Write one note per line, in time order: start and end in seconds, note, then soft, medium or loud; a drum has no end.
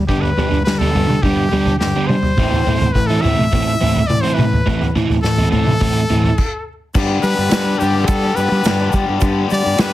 0.08 0.31 G2 medium
0.08 0.35 G2 medium
0.08 0.28 D3 medium
0.08 0.36 D3 medium
0.08 0.28 G3 medium
0.08 0.28 B3 medium
0.08 0.28 D4 medium
0.08 0.23 G4 medium
0.08 kick medium
0.08 floor tom medium
0.21 0.64 B4 medium
0.21 floor tom medium
0.37 0.64 G2 medium
0.37 0.57 D3 medium
0.37 0.64 D3 medium
0.37 0.49 G3 medium
0.37 0.57 G3 medium
0.37 0.57 B3 medium
0.37 0.57 D4 medium
0.37 floor tom medium
0.51 0.63 G2 medium
0.51 floor tom medium
0.65 0.93 G2 medium
0.65 0.93 D3 medium
0.65 0.89 G3 medium
0.65 0.80 B4 medium
0.65 snare medium
0.78 0.94 D3 medium
0.78 0.94 G3 medium
0.78 0.95 B3 medium
0.78 0.95 D4 medium
0.78 1.24 A4 medium
0.78 floor tom medium
0.95 1.21 G2 medium
0.95 1.06 G2 medium
0.95 1.21 D3 medium
0.95 1.14 D3 medium
0.95 1.14 G3 medium
0.95 1.14 B3 medium
0.95 1.15 D4 medium
0.95 floor tom medium
1.09 1.21 G3 medium
1.09 mid tom medium
1.22 1.49 G2 medium
1.22 1.45 G2 medium
1.22 1.49 D3 medium
1.22 1.43 D3 medium
1.22 1.43 G3 medium
1.22 1.43 B3 medium
1.22 1.44 D4 medium
1.22 1.79 G4 medium
1.22 kick loud
1.22 floor tom medium
1.51 1.78 G2 medium
1.51 1.78 D3 medium
1.51 1.71 D3 medium
1.51 1.75 G3 medium
1.51 1.71 G3 medium
1.51 1.72 B3 medium
1.51 1.72 D4 medium
1.51 floor tom medium
1.66 floor tom medium
1.79 1.92 G2 medium
1.79 2.07 G2 medium
1.79 2.07 D3 medium
1.79 2.09 G4 medium
1.79 snare medium
1.96 2.15 D3 medium
1.96 2.15 G3 medium
1.96 2.15 B3 medium
1.96 2.14 D4 medium
2.07 2.36 G2 medium
2.07 2.36 D3 medium
2.07 2.32 G3 medium
2.07 2.94 C5 medium
2.07 mid tom medium
2.23 floor tom medium
2.37 2.60 A2 medium
2.37 2.65 A2 medium
2.37 2.57 E3 medium
2.37 2.66 E3 medium
2.37 2.57 A3 medium
2.37 2.66 C4 medium
2.37 2.58 C4 medium
2.37 2.58 E4 medium
2.37 kick medium
2.37 floor tom medium
2.52 floor tom medium
2.66 2.93 A2 medium
2.66 2.78 A2 medium
2.66 2.86 E3 medium
2.66 2.93 E3 medium
2.66 2.86 A3 medium
2.66 2.86 C4 medium
2.66 2.86 E4 medium
2.66 floor tom medium
2.81 2.92 A2 medium
2.81 floor tom medium
2.81 mid tom medium
2.92 3.17 A2 medium
2.92 3.21 A2 medium
2.92 3.22 E3 medium
2.92 3.08 B4 medium
2.92 kick medium
3.07 3.22 E3 medium
3.07 3.23 A3 medium
3.07 3.23 C4 medium
3.07 3.24 E4 medium
3.07 3.23 A4 medium
3.21 3.35 A2 medium
3.21 3.50 A2 medium
3.21 3.43 E3 medium
3.21 3.50 E3 medium
3.21 3.43 A3 medium
3.21 3.43 C4 medium
3.21 3.43 E4 medium
3.21 4.08 E5 loud
3.21 floor tom medium
3.38 3.49 A2 medium
3.38 mid tom medium
3.52 3.75 A2 medium
3.52 3.79 A2 medium
3.52 3.71 E3 medium
3.52 3.79 E3 medium
3.52 3.71 A3 medium
3.52 3.71 C4 medium
3.52 3.72 E4 medium
3.52 kick loud
3.52 floor tom medium
3.81 4.07 A2 medium
3.81 4.03 A2 medium
3.81 4.00 E3 medium
3.81 4.07 E3 medium
3.81 4.00 A3 medium
3.81 4.00 C4 medium
3.81 4.00 E4 medium
3.81 floor tom medium
3.96 floor tom medium
4.07 4.21 A2 medium
4.07 4.36 A2 medium
4.07 4.36 E3 medium
4.07 4.23 D5 medium
4.07 mid tom medium
4.21 4.43 E3 medium
4.21 4.43 A3 medium
4.21 4.43 C4 medium
4.21 4.42 E4 medium
4.21 4.36 C5 medium
4.34 4.94 B4 medium
4.38 4.60 A2 medium
4.38 4.64 A2 medium
4.38 4.64 E3 medium
4.38 mid tom medium
4.53 floor tom medium
4.66 4.92 A2 medium
4.66 4.89 A2 medium
4.66 4.93 E3 medium
4.66 4.85 E3 medium
4.66 4.86 A3 medium
4.66 4.86 C4 medium
4.66 4.86 E4 medium
4.66 kick medium
4.66 floor tom medium
4.82 floor tom medium
4.95 5.07 A2 medium
4.95 5.22 A2 medium
4.95 5.14 E3 medium
4.95 5.22 E3 medium
4.95 5.15 A3 medium
4.95 5.15 C4 medium
4.95 5.15 E4 medium
4.95 floor tom medium
5.10 5.21 A2 medium
5.10 floor tom medium
5.22 5.46 A2 medium
5.22 5.50 A2 medium
5.22 5.50 E3 medium
5.22 5.50 A4 medium
5.22 snare medium
5.38 5.52 E3 medium
5.38 5.53 A3 medium
5.38 5.53 C4 medium
5.38 5.53 E4 medium
5.38 floor tom medium
5.51 5.78 A2 medium
5.51 5.64 A2 medium
5.51 5.78 E3 medium
5.51 5.71 E3 medium
5.51 5.72 A3 medium
5.51 5.72 C4 medium
5.51 5.72 E4 medium
5.51 6.62 A4 loud
5.51 floor tom medium
5.67 5.78 A2 medium
5.67 mid tom medium
5.81 6.07 A2 medium
5.81 6.03 A2 medium
5.81 6.07 E3 medium
5.81 6.00 E3 medium
5.81 6.00 A3 medium
5.81 6.00 C4 medium
5.81 6.00 E4 medium
5.81 kick loud
5.81 floor tom medium
6.09 6.32 A2 medium
6.09 6.36 A2 medium
6.09 6.28 E3 medium
6.09 6.36 E3 medium
6.09 6.28 A3 medium
6.09 6.29 C4 medium
6.09 6.29 E4 medium
6.09 floor tom medium
6.24 floor tom medium
6.38 kick medium
6.38 crash medium
6.95 7.51 G2 medium
6.95 7.17 G2 medium
6.95 7.51 D3 medium
6.95 7.23 G3 medium
6.95 7.24 B3 loud
6.95 7.25 D4 medium
6.95 7.26 G4 loud
6.95 kick loud
6.95 crash loud
6.95 shaker medium
7.23 7.34 G3 medium
7.23 7.41 G3 medium
7.23 7.40 B3 medium
7.23 7.39 D4 medium
7.23 7.37 G4 medium
7.23 7.80 B4 loud
7.23 shaker medium
7.37 7.49 G2 medium
7.37 7.52 G3 medium
7.37 7.53 B3 medium
7.37 7.54 D4 medium
7.37 7.54 G4 medium
7.51 8.65 G2 loud
7.51 8.09 D3 medium
7.51 7.74 G3 loud
7.51 7.80 G3 medium
7.51 7.82 B3 loud
7.51 7.82 D4 loud
7.51 7.83 G4 loud
7.51 snare loud
7.51 ride bell medium
7.51 shaker loud
7.79 8.03 G2 loud
7.79 7.98 G3 medium
7.79 7.96 B3 medium
7.79 7.95 D4 medium
7.79 8.08 G4 medium
7.79 shaker medium
7.84 7.94 G4 medium
7.95 8.26 G3 medium
7.95 8.24 B3 medium
7.95 8.23 D4 medium
7.95 8.23 G4 medium
8.07 8.30 G3 medium
8.07 8.37 A4 medium
8.07 kick loud
8.07 ride bell medium
8.07 shaker loud
8.23 8.36 G3 medium
8.23 8.37 B3 medium
8.23 8.38 D4 medium
8.23 8.40 G4 medium
8.36 8.48 G2 medium
8.36 8.54 G3 medium
8.36 8.53 B3 medium
8.36 8.52 D4 medium
8.36 8.93 B4 medium
8.36 shaker medium
8.41 8.51 G4 medium
8.52 8.62 G3 medium
8.52 8.66 G3 medium
8.52 8.66 B3 medium
8.52 8.67 D4 medium
8.52 8.68 G4 medium
8.64 8.87 G2 medium
8.64 9.08 G2 medium
8.64 9.08 D3 medium
8.64 8.82 G3 medium
8.64 8.80 B3 medium
8.64 8.79 D4 loud
8.64 8.79 G4 loud
8.64 snare loud
8.64 ride bell medium
8.64 shaker loud
8.79 8.93 G3 medium
8.79 8.93 B3 medium
8.79 8.94 D4 medium
8.79 8.95 G4 medium
8.92 9.22 G3 medium
8.92 9.05 G3 medium
8.92 9.22 B3 medium
8.92 9.22 D4 medium
8.92 9.24 G4 medium
8.92 kick medium
8.92 shaker medium
9.09 9.19 G2 medium
9.21 9.77 G2 medium
9.21 9.44 G2 loud
9.21 9.78 D3 loud
9.21 9.49 G3 medium
9.21 9.49 B3 medium
9.21 9.50 D4 loud
9.21 9.52 G4 loud
9.21 kick loud
9.21 ride bell medium
9.21 shaker loud
9.49 9.66 G3 medium
9.49 9.62 G3 medium
9.49 9.64 B3 medium
9.49 9.63 D4 medium
9.49 9.63 G4 medium
9.49 shaker medium
9.53 9.82 D5 loud
9.64 9.76 G2 medium
9.64 9.79 G3 medium
9.64 9.79 B3 medium
9.64 9.80 D4 medium
9.64 9.81 G4 medium
9.78 9.93 G2 medium
9.78 9.93 D3 loud
9.78 9.93 G3 loud
9.78 9.93 G3 medium
9.78 9.93 B3 loud
9.78 9.93 D4 loud
9.78 9.93 G4 loud
9.78 9.93 B4 loud
9.78 snare loud
9.78 ride bell medium
9.78 shaker loud